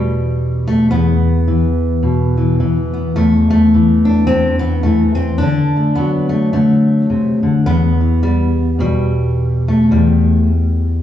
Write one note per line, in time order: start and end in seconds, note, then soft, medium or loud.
0.00 0.91 E2 medium
0.00 0.91 B2 medium
0.00 1.25 G3 loud
0.68 0.90 A3 medium
0.91 3.15 E2 medium
0.91 2.92 B3 medium
1.48 2.36 E3 medium
2.03 2.60 B2 medium
2.37 2.59 E3 soft
2.60 3.73 E3 medium
2.94 3.14 B3 soft
3.16 4.29 E2 medium
3.16 3.49 A3 medium
3.50 4.26 A3 loud
3.74 4.84 E3 medium
4.05 4.85 D4 loud
4.27 5.42 E2 medium
4.27 4.59 C4 loud
4.59 4.83 B3 medium
4.83 5.42 E3 medium
4.83 5.14 A3 medium
5.15 5.40 C4 loud
5.38 6.52 D4 loud
5.42 6.53 D3 medium
5.76 5.95 A3 soft
5.95 7.64 F#3 medium
5.95 6.29 B3 medium
6.29 6.52 A3 medium
6.53 7.09 D3 medium
6.53 7.66 A3 medium
7.10 7.42 C3 medium
7.43 7.66 D3 medium
7.66 9.91 E2 medium
7.66 8.79 B3 loud
8.01 8.22 E3 soft
8.23 8.79 G3 medium
8.79 9.92 B2 medium
8.79 9.90 G3 loud
9.68 10.48 A3 medium
9.91 11.03 E2 medium
9.91 11.03 G3 medium